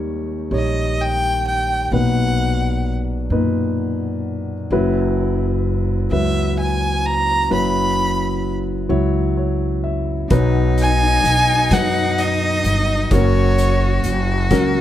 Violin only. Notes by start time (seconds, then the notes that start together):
0.55 D#5
1.01 G5
1.48 G5
1.94 F#5
6.12 E5
6.60 G#5
7.06 A#5
7.54 B5
10.81 G#5
11.73 F#5
12.19 D#5
13.12 C#5